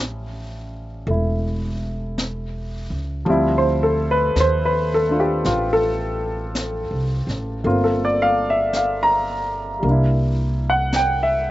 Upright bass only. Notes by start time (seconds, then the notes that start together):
Already playing: A1
1.07 E1
2.90 C#2
3.26 D2
4.36 D#2
5.46 A1
6.91 C2
7.27 A1
7.64 G1
9.83 C2